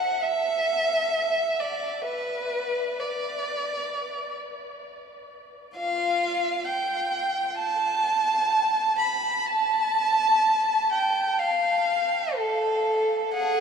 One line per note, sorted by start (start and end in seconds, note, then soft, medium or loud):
0.00 0.22 F#5 medium
0.22 1.59 E5 medium
1.60 2.06 D5 medium
2.05 2.97 B4 medium
2.99 4.35 D5 soft
5.77 6.65 F4 soft
5.77 6.65 F5 medium
6.69 7.58 G5 medium
7.59 8.95 A5 medium
8.99 9.46 B5 medium
9.47 10.92 A5 medium
10.92 11.39 G5 medium
11.39 12.37 F5 medium
12.36 13.33 A4 medium
13.34 13.60 G#4 medium
13.34 13.60 F#5 medium